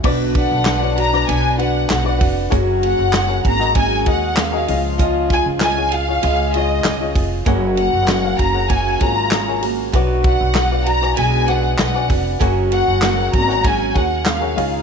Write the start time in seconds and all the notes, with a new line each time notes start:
0.03 B1 B2 D3 B3 D4 F#4 B4 D5, kick, crash
0.34 D4 F#4 B4, kick, ride
0.38 F#5
0.51 B1
0.65 B3 D4 F#4 B4, snare, clap, ride
0.81 D4 F#4 B4 C#5
0.96 D4 F#4 B4 A#5, ride
1.13 D4 F#4 B4 D5, snare
1.27 B1 B2 B3 D4 F#4 B4 G#5, ride
1.57 D4 F#4 B4 F#5, ride
1.88 B1 B3 D4 F#4 B4, snare, clap, ride
1.93 F#5
2.04 D4 F#4 B4 D5
2.19 F1 D4 F#4 B4, kick, open hi-hat, ride
2.50 F#1 F#2 C#3 F#3 A#3 C#4 F#4 G#4 A#4 C#5, kick, hi-hat pedal, ride
2.81 A#3 C#4 F#4 G#4, ride
2.85 F#5
2.99 F#1
3.12 A#3 C#4 F#4 G#4, snare, clap, ride
3.27 F#4 G#4 A#4 C#5
3.44 G#1 A#3 C#4 F#4 G#4 A#5, kick, ride
3.59 F#4 G#4 A#4 D#5, snare
3.74 F#2 F#3 G#3 A#3 C#4 F#4 G#4, kick, ride
3.79 G#5
4.05 D#2 A#3 C#4 F#4 G#4 A#4 D#5, kick, ride
4.10 F#5
4.36 A#3 C#4 F#4 G#4 F5, snare, clap, ride
4.52 F#4 G#4 A#4 D#5
4.67 C#2 G#2 F3 F4 G#4 C#5 D#5, open hi-hat, ride
4.98 C#4 F4 G#4 D#5, kick, hi-hat pedal, ride
5.29 F4 G#4 D#5 G#5, kick, ride
5.46 C#2
5.60 C#4 F4 G#4 D#5 G#5, snare, clap, ride
5.77 F4 G#4 C#5 F5
5.91 F4 G#4 D#5 F5, ride
6.08 F4 G#4 C#5 F5
6.22 C#2 G#3 C#4 F4 G#4 D#5, ride
6.53 F4 G#4 C#5 D#5, ride
6.57 D#5
6.83 C#2 C#4 F4 G#4 D#5, snare, clap, ride
7.01 F4 G#4 C#5 D#5
7.14 F1 F4 G#4 D#5, kick, open hi-hat, ride
7.45 F#1 F#2 C#3 F#3 A#3 C#4 F#4 G#4 A#4 C#5 F#5, kick, hi-hat pedal, ride
7.76 A#3 C#4 F#4 G#4 F#5, ride
7.93 F#1
8.06 A#3 C#4 F#4 G#4, snare, clap, ride
8.23 G#4 A#4 C#5 F5
8.37 F#1 A#3 C#4 F#4 G#4 A#5, kick, ride
8.54 G#4 A#4 C#5 F#5
8.69 F#2 F#3 A#3 C#4 F#4 G#4 G#5, kick, ride
8.99 G#1 F#3 A#3 C#4 F4 F#4 G#4 A#4 C#5 G#5 A#5, kick, ride
9.30 A#3 C#4 F#4 G#4, snare, clap, ride
9.48 G#4 A#4 C#5 G#5
9.61 A#3 C#4 F#4 G#4, open hi-hat, ride
9.92 B1 B2 F#3 B3 D4 F#4 B4 D5 F#5, kick, hi-hat pedal, ride
10.22 D4 F#4 B4 F#5, kick, ride
10.41 B1
10.53 B3 D4 F#4 B4, snare, clap, ride
10.71 F#4 B4 D5 F5
10.85 D4 F#4 B4 A#5, ride
11.02 F#4 B4 D5 G#5, snare
11.16 B1 B2 G#3 B3 D4 F#4 G#4 B4 G#5, ride
11.46 D4 F#4 B4 D5 F#5, ride
11.77 B1 B3 D4 F#4 B4 F#5, snare, clap, ride
11.94 F#4 B4 D5 G#5
12.08 F1 D4 F#4 B4, kick, open hi-hat, ride
12.39 F#1 F#2 C#3 F#3 A#3 C#4 F#4 G#4 A#4 C#5 F#5, kick, hi-hat pedal, ride
12.70 A#3 C#4 F#4 G#4 F#5, ride
12.88 F#1
13.01 A#3 C#4 F#4 G#4, snare, clap, ride
13.18 G#4 A#4 C#5 G#5
13.32 G#1 A#3 C#4 F#4 G#4 A#5, kick, ride
13.48 G#4 A#4 C#5 F#5, snare
13.64 F#2 F#3 A#3 C#4 F#4 G#4 G#5, kick, ride
13.94 D#2 A#3 C#4 F#4 G#4 A#4 C#5 F#5, kick, ride
14.25 A#3 C#4 F#4 G#4 F5, snare, clap, ride
14.41 G#4 A#4 C#5 F#5
14.56 C#2 G#2 D#3 D#4 F4 G#4 C#5 D#5 F5, open hi-hat, ride